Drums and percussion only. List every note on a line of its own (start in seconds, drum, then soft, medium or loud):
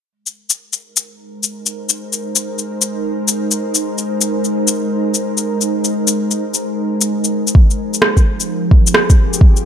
0.26 shaker soft
0.50 shaker soft
0.73 shaker soft
0.97 shaker medium
1.43 shaker soft
1.66 shaker soft
1.89 shaker soft
2.13 shaker soft
2.36 shaker medium
2.59 shaker soft
2.82 shaker medium
3.28 shaker medium
3.51 shaker soft
3.75 shaker soft
3.98 shaker soft
4.21 shaker medium
4.45 shaker soft
4.68 shaker medium
5.14 shaker medium
5.37 shaker soft
5.61 shaker soft
5.84 shaker soft
6.07 shaker medium
6.31 shaker soft
6.54 shaker medium
7.01 shaker soft
7.24 shaker soft
7.47 shaker soft
7.55 kick loud
7.71 shaker soft
7.94 shaker soft
8.02 cross-stick loud
8.17 kick medium
8.17 shaker soft
8.40 shaker soft
8.71 kick medium
8.87 shaker soft
8.94 cross-stick loud
9.10 kick loud
9.10 shaker soft
9.33 shaker soft
9.41 kick loud
9.56 shaker soft